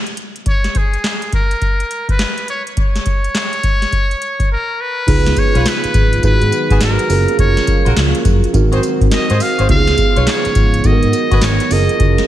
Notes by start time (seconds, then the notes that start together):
0.07 closed hi-hat
0.17 closed hi-hat
0.36 closed hi-hat
0.46 C#5, kick, closed hi-hat
0.64 snare, closed hi-hat
0.75 G#4, kick, closed hi-hat
0.94 closed hi-hat
1.04 snare, clap, closed hi-hat
1.22 closed hi-hat
1.33 A#4, kick, closed hi-hat
1.51 closed hi-hat
1.62 kick, closed hi-hat
1.80 closed hi-hat
1.91 closed hi-hat
2.09 B4, kick, closed hi-hat
2.19 snare, clap, closed hi-hat
2.38 closed hi-hat
2.48 C#5, closed hi-hat
2.67 closed hi-hat
2.77 C#5, kick, closed hi-hat
2.96 snare, closed hi-hat
3.06 kick, closed hi-hat
3.24 closed hi-hat
3.35 snare, clap, closed hi-hat
3.53 closed hi-hat
3.63 kick, closed hi-hat
3.82 snare, closed hi-hat
3.92 kick, closed hi-hat
4.11 closed hi-hat
4.22 closed hi-hat
4.40 kick, closed hi-hat
4.52 A#4
4.81 B4
5.07 C#2 C#3 F3 G#3 B3 D#4 F4 G#4 B4, kick, closed hi-hat, crash
5.26 snare, closed hi-hat
5.36 C#5, kick, closed hi-hat, tambourine
5.55 B1 C#4 F4 B4, closed hi-hat
5.66 B4, snare, clap, closed hi-hat, tambourine
5.84 muted fingered electric bass stroke, closed hi-hat
5.94 G#1, kick, closed hi-hat, tambourine
6.13 closed hi-hat
6.23 G#1 D#3 F#3 B3 D#4 F#4 G#4 B4, kick, closed hi-hat, tambourine
6.42 G#2, closed hi-hat
6.52 closed hi-hat, tambourine
6.70 G#1 B3 F#4 G#4, kick, closed hi-hat
6.81 G#1 A#4, snare, clap, closed hi-hat, tambourine
6.99 closed hi-hat
7.09 F#1 C#3 F3 A#3 C#4 F4 G#4 A#4, open hi-hat, tambourine
7.28 closed hi-hat
7.39 F#1 C#5, kick, closed hi-hat
7.57 snare, closed hi-hat
7.67 kick, closed hi-hat, tambourine
7.85 A#1 F4 F#4 A#4, closed hi-hat
7.97 C#2, snare, clap, closed hi-hat, tambourine
8.15 closed hi-hat
8.25 F#2, kick, closed hi-hat, tambourine
8.44 closed hi-hat
8.53 G#1 D#3 G#3 C4 D#4 F#4 A#4, kick, closed hi-hat, tambourine
8.72 F#4 G#4 C5, closed hi-hat
8.83 closed hi-hat, tambourine
9.01 G#1, kick, closed hi-hat
9.11 D#5, snare, clap, closed hi-hat, tambourine
9.30 G#2 F#4 G#4 C5, closed hi-hat
9.40 F5, open hi-hat, tambourine
9.58 G#1 F#4 G#4 C5, closed hi-hat
9.68 C#2 C#3 F3 B3 D#4 F4 G4 F5, kick, closed hi-hat
9.77 G#4
9.87 snare, closed hi-hat
9.98 kick, closed hi-hat, tambourine
10.16 B1 F4 B4 C#5, closed hi-hat
10.27 C#5, snare, clap, closed hi-hat, tambourine
10.45 muted fingered electric bass stroke, closed hi-hat
10.55 G#1, kick, closed hi-hat, tambourine
10.74 closed hi-hat
10.84 G#1 D#3 F#3 G#3 B3 D#4 F#4 A4 D#5, kick, closed hi-hat, tambourine
10.92 A#4
11.03 G#2, closed hi-hat
11.13 closed hi-hat, tambourine
11.31 G#1 F#4 G#4 B4, kick, closed hi-hat
11.41 G#1 C#5, snare, clap, closed hi-hat, tambourine
11.60 closed hi-hat
11.70 F#1 C#3 F3 A#3 C#4 F4 G#4 A#4 D#5, open hi-hat, tambourine
11.89 closed hi-hat
12.00 F#1, kick, closed hi-hat
12.18 snare, closed hi-hat